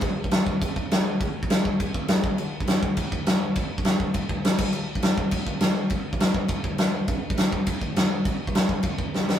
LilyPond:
\new DrumStaff \with { instrumentName = "Drums" } \drummode { \time 4/4 \tempo 4 = 204 <cymc bd>8. bd16 <cymc sn>8 bd8 <cymc bd>8 bd8 <cymc sn>4 | <cymc bd>8. bd16 <cymc sn>8 bd8 <cymc bd>8 bd8 <cymc sn>8 bd8 | cymc8. bd16 <cymc sn>8 bd8 <cymc bd>8 bd8 <cymc sn>4 | <cymc bd>8. bd16 <cymc sn>8 bd8 <cymc bd>8 bd8 <cymc sn>8 <cymc bd>8 |
cymc8. bd16 <cymc sn>8 bd8 <cymc bd>8 bd8 <cymc sn>4 | <cymc bd>8. bd16 <cymc sn>8 bd8 <cymc bd>8 bd8 <cymc sn>4 | <cymc bd>8. bd16 <cymc sn>8 bd8 <cymc bd>8 bd8 <cymc sn>4 | <cymc bd>8. bd16 <cymc sn>8 bd8 <cymc bd>8 bd8 sn8 sn8 | }